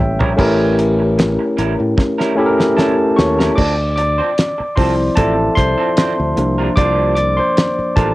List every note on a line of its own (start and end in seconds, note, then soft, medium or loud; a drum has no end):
0.00 0.20 A1 medium
0.00 0.41 G3 medium
0.00 0.40 A#3 soft
0.00 0.38 C#4 medium
0.00 0.40 C#5 medium
0.00 0.40 E5 loud
0.00 0.40 G5 loud
0.19 0.34 A#1 medium
0.19 0.31 G3 medium
0.19 0.30 C#4 soft
0.19 0.30 E4 soft
0.19 0.30 A#4 medium
0.19 floor tom medium
0.37 1.36 A1 loud
0.37 0.75 G3 medium
0.37 1.35 A3 medium
0.37 1.35 C#4 medium
0.37 0.75 C#4 medium
0.37 1.36 E4 medium
0.37 0.76 E4 medium
0.37 1.36 G4 medium
0.37 0.76 A#4 medium
0.37 1.37 A#4 medium
0.37 kick loud
0.37 crash medium
0.78 2.74 C#5 medium
0.78 closed hi-hat medium
0.99 muted clean electric guitar stroke soft
1.18 muted clean electric guitar stroke soft
1.18 snare loud
1.18 closed hi-hat medium
1.39 muted clean electric guitar stroke soft
1.57 1.75 A1 medium
1.57 1.72 G3 medium
1.57 1.73 C#4 medium
1.57 1.73 E4 medium
1.57 1.73 A#4 medium
1.57 closed hi-hat medium
1.79 1.94 A2 medium
1.79 muted clean electric guitar stroke soft
1.97 muted clean electric guitar stroke soft
1.97 kick loud
1.97 snare medium
2.18 2.32 G3 medium
2.18 2.32 C#4 medium
2.18 2.32 E4 medium
2.18 2.31 A#4 medium
2.18 snare soft
2.35 3.09 A3 medium
2.35 3.10 C#4 medium
2.35 3.11 E4 medium
2.35 3.11 G4 medium
2.35 muted clean electric guitar stroke soft
2.40 2.46 A4 medium
2.46 3.15 A#4 medium
2.58 muted clean electric guitar stroke soft
2.58 snare medium
2.76 2.92 G3 medium
2.76 2.92 C#4 medium
2.76 2.92 E4 medium
2.76 3.15 A4 medium
2.76 2.93 A#4 medium
2.76 3.18 A5 medium
2.76 snare medium
3.16 3.49 D#2 medium
3.16 3.36 C#5 medium
3.16 3.35 C#6 medium
3.16 muted clean electric guitar stroke soft
3.16 snare medium
3.38 3.50 G3 soft
3.38 3.49 C#4 soft
3.38 3.49 E4 soft
3.38 3.49 A#4 soft
3.38 snare medium
3.55 4.19 D2 loud
3.55 3.72 F3 medium
3.55 3.72 C4 medium
3.55 3.72 D4 medium
3.55 3.73 A4 medium
3.55 5.53 D5 medium
3.55 3.95 D5 medium
3.55 3.94 D6 medium
3.55 kick medium
3.55 crash medium
3.96 4.74 D5 medium
3.96 4.79 D6 medium
3.96 muted clean electric guitar stroke soft
3.96 closed hi-hat medium
4.18 4.29 F3 soft
4.18 4.29 C4 medium
4.18 4.29 D4 medium
4.18 4.28 C5 medium
4.38 snare loud
4.38 closed hi-hat medium
4.58 muted clean electric guitar stroke soft
4.58 muted fingered electric bass stroke soft
4.75 5.08 C2 medium
4.75 4.91 F3 medium
4.75 5.31 F3 soft
4.75 4.92 C4 medium
4.75 5.31 C4 soft
4.75 4.92 D4 medium
4.75 5.32 E4 medium
4.75 4.92 A4 medium
4.75 5.15 C5 medium
4.75 5.18 C6 medium
4.75 kick medium
4.75 open hi-hat medium
4.98 muted clean electric guitar stroke soft
5.15 5.48 A1 loud
5.15 5.31 F3 medium
5.15 5.32 C4 medium
5.15 5.32 D4 medium
5.15 5.55 A4 medium
5.15 5.32 A4 medium
5.15 6.73 E5 medium
5.15 5.58 A5 medium
5.15 kick medium
5.15 closed hi-hat loud
5.55 5.74 C2 medium
5.55 6.73 C5 medium
5.55 6.80 C6 loud
5.55 muted clean electric guitar stroke soft
5.55 kick medium
5.55 closed hi-hat medium
5.78 5.89 F3 medium
5.78 5.89 C4 medium
5.78 5.88 D4 medium
5.78 5.88 A4 medium
5.97 6.12 F3 medium
5.97 6.12 C4 medium
5.97 6.12 D4 medium
5.97 6.12 C5 medium
5.97 snare loud
5.97 closed hi-hat loud
6.20 6.33 D2 medium
6.36 6.68 C2 loud
6.36 6.91 F3 soft
6.36 6.91 A#3 medium
6.36 6.92 D4 medium
6.36 muted clean electric guitar stroke soft
6.36 closed hi-hat medium
6.58 6.69 G3 soft
6.58 6.69 D4 soft
6.58 6.68 F4 medium
6.58 6.68 A#4 medium
6.76 7.39 C2 loud
6.76 7.14 G3 medium
6.76 7.14 D4 medium
6.76 7.14 F4 medium
6.76 7.15 C5 medium
6.76 7.15 D5 medium
6.76 7.14 D6 loud
6.76 kick medium
6.76 closed hi-hat medium
7.15 7.38 D5 medium
7.15 7.38 D6 medium
7.15 closed hi-hat medium
7.37 7.93 C5 medium
7.37 7.98 C6 medium
7.37 muted clean electric guitar stroke soft
7.57 muted clean electric guitar stroke soft
7.57 snare loud
7.57 closed hi-hat medium
7.79 muted fingered electric bass stroke medium
7.96 8.14 A1 loud
7.96 8.08 G3 medium
7.96 8.08 D4 medium
7.96 8.09 F4 medium
7.96 8.14 A4 medium
7.96 8.09 A#4 medium
7.96 8.14 A5 medium
7.96 kick loud
7.96 closed hi-hat medium